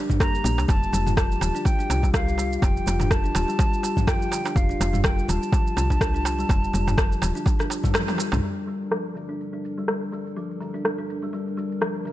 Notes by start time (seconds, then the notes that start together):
Already playing: G3 D4 G4 A#4
0.10 D4, kick, mid tom, shaker
0.20 A#3 A#5, kick, cross-stick, darbuka tek, shaker
0.35 shaker
0.44 A#1 A#3, darbuka tek, shaker
0.58 C2, darbuka ka, shaker
0.68 F1 G3 F4 A5, kick, darbuka tek, shaker
0.83 shaker
0.93 F1 G3, darbuka tek, shaker
1.07 mid tom, shaker
1.17 F3 A5, kick, cross-stick, darbuka tek, shaker
1.32 shaker
1.41 D#1 D3, darbuka tek, shaker
1.55 D4, shaker
1.65 G5, kick, darbuka tek, shaker
1.79 D4, shaker
1.90 C2, darbuka tek, shaker
2.03 G3, kick, darbuka ka, shaker
2.14 G3 F5, kick, cross-stick, darbuka tek, shaker
2.28 shaker
2.38 G3, darbuka tek, shaker
2.53 shaker
2.62 F1 F3 G5, kick, darbuka tek, shaker
2.77 shaker
2.86 F1 D3, darbuka tek, shaker
3.00 D4, mid tom, darbuka ka, shaker
3.11 A5, kick, cross-stick, darbuka tek, shaker
3.24 D4, shaker
3.35 D#1, darbuka tek, shaker
3.48 G3, shaker
3.59 G3, kick, darbuka ka, darbuka tek, shaker
3.74 shaker
3.83 G3, darbuka tek, shaker
3.97 kick, mid tom, shaker
4.07 F3 G5, kick, cross-stick, darbuka tek, shaker
4.22 shaker
4.31 D3, darbuka tek, shaker
4.45 D4, darbuka ka, shaker
4.56 F1 F5, kick, darbuka tek, shaker
4.69 D4, shaker
4.80 F1, darbuka tek, shaker
4.93 G3, mid tom, shaker
5.04 G3 G5, kick, cross-stick, darbuka tek, shaker
5.19 shaker
5.28 D#1 G3 A5, darbuka tek, shaker
5.43 shaker
5.52 F3, kick, darbuka tek, shaker
5.67 shaker
5.77 C2 D3, darbuka tek, shaker
5.90 D4, kick, darbuka ka, shaker
6.01 kick, cross-stick, darbuka tek, shaker
6.14 D4, shaker
6.25 darbuka tek, shaker
6.39 G3, shaker
6.49 F1 G3, kick, darbuka tek, shaker
6.64 shaker
6.73 F1 G3, darbuka tek, shaker
6.87 mid tom, darbuka ka, shaker
6.98 F3, kick, cross-stick, darbuka tek, shaker
7.12 shaker
7.22 D#1 D3, darbuka tek, shaker
7.35 D4, shaker
7.46 kick, darbuka ka, darbuka tek, shaker
7.59 D4, cross-stick, shaker
7.70 darbuka tek, shaker
7.84 G3, kick, mid tom, shaker
7.94 G3, cross-stick, high tom, darbuka tek, shaker
8.08 high tom, darbuka ka, shaker
8.18 G3, darbuka tek, shaker
8.32 C2, mid tom, darbuka ka, shaker
8.43 G3 D4 A4 A#4, shaker
8.57 shaker
8.67 G3, shaker
8.82 shaker
8.91 F3, cross-stick, shaker
9.06 shaker
9.15 D3, shaker
9.29 D4, shaker
9.40 shaker
9.53 D4, shaker
9.65 shaker
9.78 G3, shaker
9.88 G3, cross-stick, shaker
10.02 shaker
10.12 G3, shaker
10.27 shaker
10.36 F3, shaker
10.51 shaker
10.60 D3, shaker
10.74 D4, shaker
10.85 cross-stick, shaker
10.98 D4, shaker
11.10 shaker
11.22 G3, shaker
11.33 G3, shaker
11.48 shaker
11.57 G3, shaker
11.72 shaker
11.81 F3, cross-stick, shaker
11.96 shaker
12.05 D3, shaker